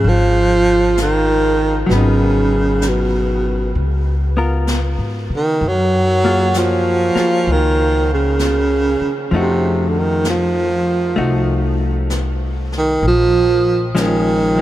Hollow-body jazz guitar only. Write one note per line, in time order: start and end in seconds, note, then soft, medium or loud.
0.00 1.86 F3 soft
0.00 1.91 C4 soft
0.00 1.92 D#4 soft
1.86 3.73 F#3 soft
1.92 3.76 B3 soft
1.97 3.79 D#4 soft
4.37 5.60 B3 soft
4.37 5.61 F4 soft
4.37 5.61 A#4 soft
6.24 7.14 A#3 soft
6.24 7.16 F4 soft
6.24 7.17 G#4 soft
7.15 9.32 A#3 soft
7.15 9.32 F4 soft
7.15 9.33 G#4 soft
9.31 13.03 F3 soft
9.31 11.15 A3 soft
9.31 11.16 D#4 soft
9.36 11.17 F#4 soft
11.16 13.02 A3 soft
11.16 13.03 D#4 soft
11.16 13.03 F#4 soft
13.95 14.54 F3 soft
13.95 14.57 G#3 soft
13.95 14.58 C#4 soft
14.55 14.61 F3 soft
14.55 14.61 G#3 soft